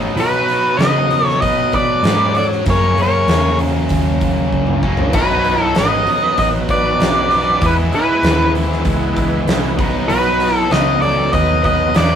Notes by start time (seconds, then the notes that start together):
Already playing: A2 B2 F#3 B3 D#4
0.16 B2 F#4 B4, open hi-hat
0.48 open hi-hat
0.77 C#3 B4 D#5, snare, open hi-hat
1.11 open hi-hat
1.24 A4 C#5, snare
1.42 B2 B4 D#5, kick, open hi-hat
1.72 B4 D5, kick, open hi-hat
2.03 G#2 B2 F#3 B3 D#4, snare, open hi-hat
2.35 A4 D5, open hi-hat
2.52 snare
2.64 F#2 C#3 F#3 A#3, kick, open hi-hat
2.69 C#4 A#4 C#5
2.98 A#4, open hi-hat
3.03 C#5
3.28 E2, snare, open hi-hat
3.59 open hi-hat
3.89 D#2, kick, open hi-hat
4.21 kick, open hi-hat
4.52 C#2, kick
4.67 mid tom
4.83 C#3 F#3 A#3 C#4, kick
4.87 F#2
4.97 floor tom
5.09 B3 D#4 F#4 B4
5.13 B1 B2 F#3 B3 D#4 F#4 B4, kick, open hi-hat, crash
5.43 B3 D#4 F#4 B4, open hi-hat
5.59 E4
5.63 A4
5.72 B3 D#4 F#4 B4, open hi-hat
5.76 G#1 B4 D#5, snare
6.04 B3 D#4 F#4 A4, open hi-hat
6.36 A1 B3 D#4 F#4 B4 D#5, kick, open hi-hat
6.42 B4
6.69 B3 D#4 F#4 B4 D5, kick, open hi-hat
6.74 B4
6.99 B1 B3 D#4 F#4 B4, snare, open hi-hat
7.30 B2 F#3 B3 D#4 F#4 B4, open hi-hat
7.59 E2 E3 G#3 B3 E4 G#4 B4, kick, open hi-hat
7.63 B3 E4 B4
7.91 B3 E4 G#4 B4 C#5, muted picked electric bass stroke, open hi-hat
7.96 E4
8.23 D#2 B3 E4 G#4 B4, snare, open hi-hat
8.52 B3 E4 G#4 B4, open hi-hat
8.72 snare
8.81 B3 E4 G#4 B4, open hi-hat
8.85 C#2, kick
9.12 B3 E4 G#4 B4
9.16 kick, open hi-hat
9.46 C2 B3 E4 G#4 B4, snare, open hi-hat
9.76 B2 F#3 B3 D#4 F#4 B4, kick, open hi-hat
9.80 B3 D#4
10.09 B1 F#4 B4, open hi-hat
10.40 B3 D#4 F#4 G#4, open hi-hat
10.53 E4
10.58 A4
10.68 C#2 B3 D#4 F#4 B4 D#5, open hi-hat
10.73 snare
11.01 B3 D#4 F#4 A4 C#5 D5, open hi-hat
11.32 D#2 B3 D#4 F#4 A4 B4 D#5, kick, open hi-hat
11.63 B3 D#4 F#4 B4 D#5, kick, open hi-hat
11.94 E2 B2 F#3 B3 D#4 F#4 B4 C#5 D5, snare, open hi-hat
11.99 D#4